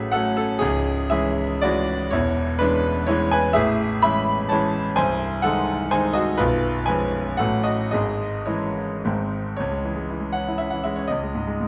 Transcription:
grand piano
Already playing: A1 A2 F#3 A3 C#4 G#4 A4 E5 F#5
0.12 F#3 A3 C#4 A4 F#5
0.37 C#4 A4
0.59 C#1 C#2 C#4 G#4
1.10 E3 G#3 C#4 G#4 E5
1.61 E3 G#3 C#4 F#4 D5
2.11 E1 E2 E4 C#5
2.59 E3 G#3 C#4 D4 B4
3.07 E3 G#3 C#4 E4 C#5
3.31 B4 G#5
3.53 A1 A2 G#4 E5
4.02 E3 G#3 C#4 E5 B5
4.49 E3 G#3 C#4 C#5 A5
4.96 C1 C2 C5 G#5
5.42 D#3 G#3 D#4 A4 F#5
5.91 D#3 G#3 D#4 C5 G#5
6.13 F#4 D#5
6.38 B0 B1 F4 B4
6.86 F3 G#3 C#4 B4 G#5
7.37 A1 A2 F#3 C#4 A4 F#5
7.63 F#4 D#5
7.91 G#1 G#2 G#4 D#5
8.45 E3 G#3 C#4 E4 C#5
9.05 G#1 G#2 D#3 G#3 C4
9.57 C#2 C#5
9.71 G#3
9.85 E3
9.96 G#3
10.10 E3
10.20 G#3
10.33 C#4 F#5
10.48 E4
10.58 C#4 E5
10.70 E3 F#5
10.84 G#3 E5
10.96 C#4 C#5
11.08 C#2 D#5
11.23 G#3
11.35 G#2
11.47 G#3
11.61 G#2

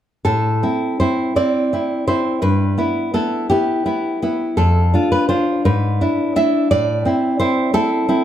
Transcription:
nylon-string guitar
0.25 A2 A4
0.63 C4 E4
1.00 C4 E4 C5
1.36 C4 E4 D5
1.73 C4 E4
2.07 C4 E4 C5
2.42 G2 B4
2.78 B3 E4
3.14 B3 E4 A4
3.50 B3 E4 G4
3.86 B3 E4
4.22 B3 E4
4.57 F2 A4
4.94 D4 F4
5.12 B4
5.29 D4 F4 C5
5.65 G#2 B4
6.01 D4 E4
6.36 D4 E4 E5
6.71 A2 D5
7.05 C4 E4
7.40 C4 E4 C5
7.74 C4 E4 A4
8.09 C4 E4

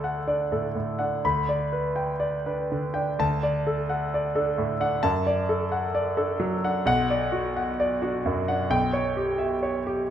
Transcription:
grand piano
Already playing: D2 A4 D5 A5
0.04 F#5
0.27 D4 D5
0.52 A2 A4
0.75 A2
0.99 D4 F#5
1.25 D2 B5
1.49 D5
1.73 B4
1.96 G5
2.20 D5
2.46 D4 B4
2.72 D3
2.94 D4 G5
3.19 D2 A5
3.43 D5
3.67 A4
3.89 F#5
4.14 D5
4.35 D4 A4
4.58 A2
4.80 D4 F#5
5.03 F#2 A5
5.27 D5
5.49 A4
5.72 F#5
5.95 D5
6.17 D4 A4
6.40 F#3
6.64 D4 F#5
6.86 B1 F#5
7.10 D5
7.32 F#4
7.57 F#5
7.80 D5
8.02 D4 F#4
8.26 F#2
8.48 D4 F#5
8.70 B1 G5
8.93 C#5
9.17 G4
9.38 E5
9.63 C#5
9.87 G4

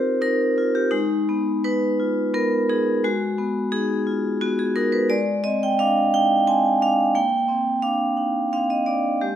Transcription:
vibraphone
Already playing: C4 D#4 F4 G4 A#4 C5
0.21 D#4 A#4
0.58 F4
0.75 G4
0.91 G#3 D#4
1.29 B3
1.64 D#4 B4
2.00 F4
2.34 B3 A#4
2.69 D#4 G#4
3.04 G#3 F#4
3.38 B3
3.72 D#4 G#4
4.07 F4
4.41 B3 F#4
4.59 G#4
4.76 D#4 A#4
4.92 B4
5.10 G#3 D5
5.44 C4 D#5
5.63 G5
5.79 D4 F5
6.14 D#4 G5
6.47 C4 G#5
6.82 D4 F5
7.15 A#3 G5
7.48 C4
7.82 D4 F5
8.17 D#4
8.53 C4 F5
8.70 D#5
8.86 D4 D5
9.21 G#3 G4

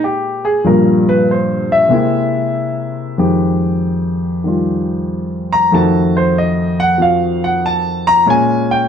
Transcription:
grand piano
Already playing: A#2 G#3 A#3 C5
0.04 G4
0.45 G#4
0.64 G2 A#2 F3 G3 A#4
1.09 B4
1.31 C5
1.72 E5
1.89 C3 G#3 A#3 C4
1.94 E4
3.18 F2 D#3 G#3 G4
4.44 D#3 G3 F4
5.53 A#5
5.72 F2 D#3 A3 F#4 A5
6.17 C5
6.38 D#5
6.80 F#5
6.98 F3 C4 F#4 F5
7.44 F#5
7.66 A5
8.07 A#5
8.26 A#2 G#3 C#4
8.30 G#5
8.71 G5

